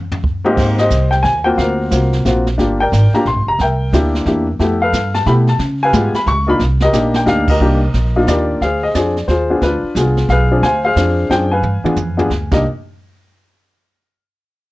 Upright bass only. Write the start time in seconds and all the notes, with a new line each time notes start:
0.57 G#1
0.90 C2
1.24 D#2
1.58 D2
1.91 C2
2.25 A#1
2.59 G1
2.92 G#1
3.13 muted upright bass stroke
3.25 A#1
3.36 G1
3.47 F1
3.59 C2
3.93 D2
4.26 E2
4.59 F2
4.93 G2
5.26 B2
5.59 C#3
5.93 G#2
6.13 muted upright bass stroke
6.26 C#2
6.59 C2
6.93 A#1
7.26 D2
7.60 C2
7.94 A#1
8.27 D#2
8.61 D2
8.95 F2
9.28 D#2
9.61 D2
9.83 muted upright bass stroke
9.95 C2
10.29 B1
10.62 D2
10.96 F2
11.30 F#2
11.62 G2
11.84 muted upright bass stroke
11.96 F2
12.30 D2
12.51 C2